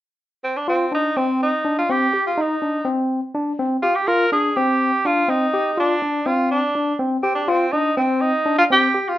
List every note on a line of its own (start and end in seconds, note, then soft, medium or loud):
0.44 0.58 C4 medium
0.56 0.68 D4 medium
0.68 0.91 C4 medium
0.68 0.85 F4 medium
0.92 1.09 D4 medium
0.92 1.18 D#4 medium
1.17 1.51 C4 medium
1.17 1.41 C4 medium
1.43 1.76 D#4 medium
1.65 1.82 D4 medium
1.78 1.92 F4 medium
1.89 2.06 C4 medium
1.89 2.26 G4 medium
2.14 2.31 G4 medium
2.26 2.43 F4 medium
2.38 2.55 D#4 medium
2.38 2.88 D#4 medium
2.62 2.79 D4 medium
2.85 3.20 C4 medium
3.34 3.52 D4 medium
3.59 3.76 C4 medium
3.82 3.97 F4 medium
3.82 4.00 G4 medium
3.95 4.09 G4 medium
4.07 4.25 F4 medium
4.07 4.32 A#4 medium
4.32 4.49 D4 medium
4.32 4.57 G#4 medium
4.56 4.91 C4 medium
4.56 5.07 G4 medium
5.05 5.22 D4 medium
5.05 5.31 F4 medium
5.29 5.46 C4 medium
5.29 5.78 D#4 medium
5.54 5.71 G4 medium
5.78 6.28 D4 medium
5.78 5.95 F4 medium
6.02 6.19 D4 medium
6.26 6.60 C4 medium
6.26 6.50 F4 medium
6.51 6.96 D4 medium
6.75 6.92 D4 medium
6.99 7.16 C4 medium
7.22 7.34 C4 medium
7.22 7.41 G4 medium
7.35 7.50 D4 medium
7.48 7.73 C4 medium
7.48 7.65 F4 medium
7.72 7.90 D4 medium
7.72 7.96 D#4 medium
7.96 8.22 C4 medium
7.96 8.31 C4 medium
8.21 8.58 D#4 medium
8.46 8.63 D4 medium
8.58 8.64 F4 medium
8.70 8.87 C4 medium
8.70 9.09 G4 medium
8.94 9.11 G4 medium
9.08 9.18 F4 medium